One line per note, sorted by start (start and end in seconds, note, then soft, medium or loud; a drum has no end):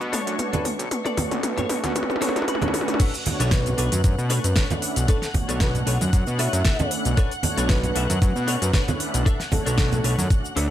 0.00 0.22 B2 loud
0.00 3.01 D4 medium
0.00 3.01 C#6 medium
0.00 maracas soft
0.13 0.50 A3 loud
0.13 0.33 D4 loud
0.13 0.50 D4 medium
0.13 0.50 F#4 loud
0.13 0.33 A4 loud
0.13 0.50 C#5 medium
0.13 0.34 C#5 loud
0.13 open hi-hat loud
0.13 mid tom medium
0.13 maracas medium
0.27 0.37 F#2 medium
0.27 closed hi-hat medium
0.27 maracas soft
0.39 0.89 B4 medium
0.39 closed hi-hat medium
0.39 mid tom medium
0.39 maracas medium
0.53 0.68 A3 medium
0.53 0.68 C#4 medium
0.53 0.65 D4 medium
0.53 0.68 D4 medium
0.53 0.68 F#4 medium
0.53 0.65 A4 medium
0.53 0.66 B4 loud
0.53 closed hi-hat soft
0.53 high conga loud
0.53 low conga medium
0.65 open hi-hat loud
0.65 mid tom medium
0.65 maracas medium
0.79 0.89 B1 medium
0.79 muted clean electric guitar stroke soft
0.79 closed hi-hat soft
0.79 maracas soft
0.91 1.42 B4 medium
0.91 closed hi-hat medium
0.91 mid tom medium
0.91 maracas soft
1.05 1.31 D4 loud
1.05 1.32 A4 loud
1.05 1.32 D5 loud
1.05 closed hi-hat soft
1.05 mid tom medium
1.05 maracas soft
1.17 1.41 A3 loud
1.17 1.42 C#4 medium
1.17 1.42 D4 medium
1.17 1.42 F#4 loud
1.17 open hi-hat loud
1.17 mid tom medium
1.17 high conga loud
1.17 low conga medium
1.17 maracas medium
1.31 1.66 B1 loud
1.31 closed hi-hat medium
1.31 mid tom medium
1.31 maracas soft
1.43 1.94 B4 loud
1.43 closed hi-hat medium
1.43 mid tom medium
1.43 maracas soft
1.57 1.76 D4 medium
1.57 1.77 A4 medium
1.57 1.77 C#5 loud
1.57 closed hi-hat soft
1.57 mid tom medium
1.57 low conga medium
1.57 maracas soft
1.69 1.81 B1 medium
1.69 1.94 A3 loud
1.69 1.94 C#4 medium
1.69 1.94 D4 medium
1.69 1.94 F#4 loud
1.69 open hi-hat loud
1.69 mid tom medium
1.69 maracas medium
1.84 1.93 F#2 loud
1.84 closed hi-hat medium
1.84 mid tom medium
1.84 high conga medium
1.84 maracas soft
1.95 2.20 A3 loud
1.95 2.20 C#4 medium
1.95 2.20 D4 medium
1.95 2.20 F#4 loud
1.95 2.20 B4 loud
1.95 muted clean electric guitar stroke soft
1.95 closed hi-hat medium
1.95 mid tom loud
1.95 maracas soft
2.03 mid tom medium
2.10 mid tom medium
2.10 maracas soft
2.16 mid tom medium
2.21 2.33 D2 loud
2.21 2.46 A3 loud
2.21 2.46 C#4 medium
2.21 2.41 D4 loud
2.21 2.46 D4 loud
2.21 2.46 F#4 loud
2.21 2.42 A4 loud
2.21 2.46 B4 loud
2.21 2.42 C#5 loud
2.21 open hi-hat loud
2.21 mid tom loud
2.21 maracas medium
2.29 mid tom medium
2.36 2.46 F#2 medium
2.36 closed hi-hat medium
2.36 mid tom medium
2.36 maracas soft
2.42 mid tom medium
2.47 2.72 A3 loud
2.47 2.72 C#4 medium
2.47 2.72 D4 medium
2.47 2.73 F#4 loud
2.47 2.72 B4 loud
2.47 2.72 B5 medium
2.47 closed hi-hat medium
2.47 mid tom loud
2.47 maracas soft
2.55 mid tom loud
2.61 2.74 D4 medium
2.61 2.74 A4 medium
2.61 2.74 C#5 loud
2.61 closed hi-hat soft
2.61 mid tom medium
2.61 high conga medium
2.61 low conga medium
2.68 mid tom medium
2.74 2.98 A3 loud
2.74 2.98 C#4 loud
2.74 2.98 D4 loud
2.74 2.98 F#4 loud
2.74 2.98 B4 loud
2.74 2.98 F#5 medium
2.74 open hi-hat loud
2.74 mid tom loud
2.74 maracas medium
2.81 mid tom medium
2.87 muted clean electric guitar stroke soft
2.87 closed hi-hat soft
2.87 mid tom loud
2.87 maracas soft
2.94 mid tom loud
2.99 3.14 D4 loud
2.99 3.14 A4 loud
2.99 3.14 B4 loud
2.99 3.14 C#5 loud
2.99 10.70 F#5 medium
2.99 10.70 F#6 medium
2.99 kick loud
2.99 closed hi-hat medium
2.99 crash loud
2.99 maracas medium
2.99 shaker medium
3.14 closed hi-hat soft
3.14 maracas soft
3.14 shaker soft
3.25 3.63 A3 medium
3.25 3.63 D4 medium
3.25 3.63 F#4 loud
3.25 3.63 C#5 medium
3.25 muted clean electric guitar stroke soft
3.25 open hi-hat loud
3.25 high conga loud
3.25 low conga medium
3.25 maracas loud
3.40 3.75 B1 loud
3.40 3.59 D4 medium
3.40 3.59 A4 medium
3.40 3.59 B4 medium
3.40 3.60 C#5 loud
3.40 closed hi-hat medium
3.40 maracas soft
3.40 shaker medium
3.51 4.26 B4 loud
3.51 kick loud
3.51 snare loud
3.51 closed hi-hat medium
3.51 maracas medium
3.51 shaker medium
3.66 3.81 A3 medium
3.66 3.81 C#4 medium
3.66 3.81 D4 medium
3.66 3.81 F#4 medium
3.66 closed hi-hat soft
3.66 low conga medium
3.66 shaker soft
3.66 maracas soft
3.78 3.90 B1 medium
3.78 3.92 D4 medium
3.78 3.92 A4 medium
3.78 3.93 B4 medium
3.78 3.93 C#5 loud
3.78 open hi-hat loud
3.78 maracas loud
3.92 4.02 F#2 loud
3.92 closed hi-hat medium
3.92 high conga medium
3.92 maracas soft
3.92 shaker medium
4.04 4.16 F#2 loud
4.04 4.15 A3 medium
4.04 4.15 C#4 medium
4.04 4.15 D4 medium
4.04 4.15 F#4 medium
4.04 muted clean electric guitar stroke soft
4.04 kick loud
4.04 closed hi-hat medium
4.04 maracas medium
4.04 shaker medium
4.18 4.39 B2 loud
4.18 maracas soft
4.18 shaker soft
4.30 4.41 A3 medium
4.30 4.41 C#4 medium
4.30 4.44 D4 loud
4.30 4.41 D4 medium
4.30 4.41 F#4 loud
4.30 4.44 A4 loud
4.30 4.45 B4 loud
4.30 4.45 C#5 loud
4.30 open hi-hat loud
4.30 maracas loud
4.44 4.54 F#2 medium
4.44 4.63 B4 loud
4.44 closed hi-hat medium
4.44 shaker medium
4.44 maracas soft
4.56 4.82 D4 medium
4.56 4.83 A4 medium
4.56 4.83 B4 medium
4.56 4.83 C#5 medium
4.56 kick loud
4.56 snare loud
4.56 closed hi-hat medium
4.56 maracas medium
4.56 shaker medium
4.70 4.93 A3 medium
4.70 4.93 C#4 medium
4.70 4.93 D4 medium
4.70 4.94 E4 loud
4.70 closed hi-hat soft
4.70 high conga medium
4.70 low conga medium
4.70 shaker soft
4.82 open hi-hat loud
4.82 maracas loud
4.96 5.06 B1 medium
4.96 5.06 A3 medium
4.96 5.06 C#4 medium
4.96 5.06 D4 medium
4.96 5.06 A4 medium
4.96 closed hi-hat medium
4.96 shaker medium
4.96 maracas soft
5.08 5.23 D4 loud
5.08 5.28 A4 medium
5.08 5.23 A4 loud
5.08 5.23 B4 loud
5.08 5.23 C#5 loud
5.08 kick loud
5.08 closed hi-hat medium
5.08 maracas medium
5.08 shaker medium
5.22 snare soft
5.22 closed hi-hat soft
5.22 maracas soft
5.22 shaker soft
5.34 5.71 A3 loud
5.34 5.72 D4 medium
5.34 5.72 F#4 loud
5.34 5.72 C#5 medium
5.34 muted clean electric guitar stroke soft
5.34 kick medium
5.34 open hi-hat loud
5.34 high conga loud
5.34 low conga medium
5.34 maracas loud
5.48 5.83 B1 loud
5.48 5.68 D4 medium
5.48 5.68 A4 medium
5.48 5.68 B4 medium
5.48 5.68 C#5 loud
5.48 closed hi-hat medium
5.48 maracas soft
5.48 shaker medium
5.60 5.81 B4 medium
5.60 kick loud
5.60 snare loud
5.60 closed hi-hat medium
5.60 maracas medium
5.60 shaker medium
5.75 5.90 A3 medium
5.75 5.90 C#4 medium
5.75 5.90 D4 medium
5.75 5.90 F#4 medium
5.75 closed hi-hat soft
5.75 low conga medium
5.75 maracas soft
5.75 shaker soft
5.86 5.98 B1 medium
5.86 6.01 D4 loud
5.86 6.01 A4 medium
5.86 6.01 B4 medium
5.86 6.02 C#5 loud
5.86 open hi-hat loud
5.86 maracas medium
6.01 6.11 F#2 loud
6.01 open hi-hat medium
6.01 high conga medium
6.01 maracas soft
6.01 shaker medium
6.12 6.25 F#2 medium
6.12 6.23 A3 medium
6.12 6.23 C#4 medium
6.12 6.24 D4 medium
6.12 6.24 F#4 medium
6.12 muted clean electric guitar stroke soft
6.12 kick loud
6.12 closed hi-hat medium
6.12 maracas medium
6.12 shaker medium
6.27 6.48 B2 medium
6.27 maracas soft
6.27 shaker soft
6.39 6.50 A3 medium
6.39 6.50 C#4 medium
6.39 6.53 D4 loud
6.39 6.50 D4 medium
6.39 6.50 F#4 loud
6.39 6.53 A4 loud
6.39 6.54 B4 loud
6.39 6.54 C#5 loud
6.39 6.91 E5 medium
6.39 open hi-hat loud
6.39 maracas medium
6.53 6.63 F#2 medium
6.53 closed hi-hat medium
6.53 maracas soft
6.53 shaker medium
6.65 6.91 D4 medium
6.65 6.91 A4 medium
6.65 6.92 B4 medium
6.65 6.92 E5 loud
6.65 kick loud
6.65 snare loud
6.65 closed hi-hat medium
6.65 maracas medium
6.65 shaker medium
6.79 7.02 A3 medium
6.79 7.02 C#4 medium
6.79 7.02 D4 medium
6.79 7.02 E4 loud
6.79 closed hi-hat soft
6.79 high conga medium
6.79 low conga loud
6.79 shaker soft
6.91 open hi-hat loud
6.91 maracas loud
7.05 7.15 B1 loud
7.05 7.14 A3 medium
7.05 7.14 C#4 medium
7.05 7.15 D4 medium
7.05 7.15 A4 medium
7.05 closed hi-hat medium
7.05 maracas soft
7.05 shaker medium
7.17 7.31 D4 loud
7.17 7.32 A4 loud
7.17 7.32 B4 loud
7.17 7.32 C#5 loud
7.17 kick loud
7.17 closed hi-hat medium
7.17 maracas soft
7.17 shaker medium
7.31 closed hi-hat soft
7.31 maracas soft
7.31 shaker soft
7.43 7.80 A3 loud
7.43 7.81 D4 medium
7.43 7.81 F#4 loud
7.43 7.80 C#5 medium
7.43 muted clean electric guitar stroke soft
7.43 open hi-hat loud
7.43 high conga medium
7.43 low conga medium
7.43 maracas medium
7.57 7.92 B1 loud
7.57 7.76 D4 medium
7.57 7.77 A4 medium
7.57 7.77 B4 medium
7.57 7.77 C#5 loud
7.57 closed hi-hat medium
7.57 maracas soft
7.57 shaker medium
7.69 8.43 B4 loud
7.69 kick loud
7.69 snare loud
7.69 closed hi-hat medium
7.69 maracas soft
7.69 shaker medium
7.83 7.98 A3 medium
7.83 7.98 C#4 medium
7.83 7.99 D4 medium
7.83 7.99 F#4 medium
7.83 closed hi-hat soft
7.83 low conga medium
7.83 maracas soft
7.83 shaker soft
7.95 8.07 B1 medium
7.95 8.10 D4 medium
7.95 8.10 A4 medium
7.95 8.10 B4 medium
7.95 8.10 E5 loud
7.95 open hi-hat loud
7.95 maracas medium
8.10 8.19 F#2 medium
8.10 closed hi-hat medium
8.10 high conga medium
8.10 maracas soft
8.10 shaker medium
8.21 8.33 F#2 loud
8.21 8.32 A3 medium
8.21 8.32 C#4 medium
8.21 8.32 D4 medium
8.21 8.32 F#4 medium
8.21 muted clean electric guitar stroke soft
8.21 kick loud
8.21 closed hi-hat medium
8.21 maracas medium
8.21 shaker medium
8.36 8.57 B2 loud
8.36 maracas soft
8.36 shaker soft
8.47 8.58 A3 medium
8.47 8.58 C#4 medium
8.47 8.62 D4 loud
8.47 8.59 D4 medium
8.47 8.59 F#4 loud
8.47 8.62 A4 loud
8.47 8.62 B4 loud
8.47 8.63 C#5 loud
8.47 open hi-hat loud
8.47 maracas medium
8.62 8.72 F#2 medium
8.62 8.81 B4 medium
8.62 closed hi-hat soft
8.62 maracas soft
8.62 shaker medium
8.73 9.00 D4 medium
8.73 9.00 A4 medium
8.73 9.00 B4 medium
8.73 9.00 C#5 loud
8.73 kick loud
8.73 snare loud
8.73 closed hi-hat medium
8.73 maracas soft
8.73 shaker medium
8.88 9.11 A3 medium
8.88 9.11 C#4 medium
8.88 9.11 D4 medium
8.88 9.11 E4 loud
8.88 closed hi-hat soft
8.88 high conga medium
8.88 low conga medium
8.88 shaker soft
9.00 open hi-hat loud
9.00 maracas loud
9.14 9.24 B1 medium
9.14 9.23 A3 medium
9.14 9.23 C#4 medium
9.14 9.23 D4 medium
9.14 9.23 A4 medium
9.14 closed hi-hat medium
9.14 maracas soft
9.14 shaker medium
9.25 9.40 D4 loud
9.25 9.40 A4 loud
9.25 9.40 B4 loud
9.25 9.41 E5 loud
9.25 kick loud
9.25 closed hi-hat medium
9.25 maracas soft
9.25 shaker medium
9.40 snare soft
9.40 closed hi-hat soft
9.40 maracas soft
9.40 shaker soft
9.52 9.89 A3 loud
9.52 9.89 D4 medium
9.52 9.89 F#4 loud
9.52 9.61 A4 medium
9.52 9.89 C#5 medium
9.52 muted clean electric guitar stroke soft
9.52 kick medium
9.52 open hi-hat loud
9.52 high conga loud
9.52 low conga medium
9.52 maracas medium
9.66 10.01 B1 loud
9.66 9.85 D4 medium
9.66 9.85 A4 medium
9.66 9.74 A4 medium
9.66 9.86 B4 medium
9.66 9.86 C#5 loud
9.66 closed hi-hat soft
9.66 maracas soft
9.66 shaker medium
9.78 10.30 A4 loud
9.78 kick loud
9.78 snare loud
9.78 closed hi-hat medium
9.78 maracas soft
9.78 shaker medium
9.91 10.07 A3 medium
9.91 10.07 C#4 medium
9.91 10.07 D4 medium
9.91 10.07 F#4 medium
9.91 closed hi-hat soft
9.91 low conga medium
9.91 maracas soft
9.91 shaker soft
10.04 10.16 B1 medium
10.04 10.18 D4 medium
10.04 10.18 A4 medium
10.04 10.19 B4 medium
10.04 10.19 C#5 loud
10.04 open hi-hat loud
10.04 maracas medium
10.18 10.28 F#2 medium
10.18 open hi-hat medium
10.18 high conga medium
10.18 maracas soft
10.18 shaker medium
10.30 10.41 A3 medium
10.30 10.41 C#4 medium
10.30 10.41 D4 medium
10.30 10.41 F#4 medium
10.30 muted clean electric guitar stroke soft
10.30 kick loud
10.30 closed hi-hat medium
10.30 maracas medium
10.30 shaker medium
10.44 maracas soft
10.44 shaker soft
10.56 10.68 D2 medium
10.56 10.70 D4 loud
10.56 10.70 A4 loud
10.56 10.70 B4 loud
10.56 10.70 C#5 loud
10.56 10.70 A5 medium
10.56 open hi-hat loud
10.56 maracas medium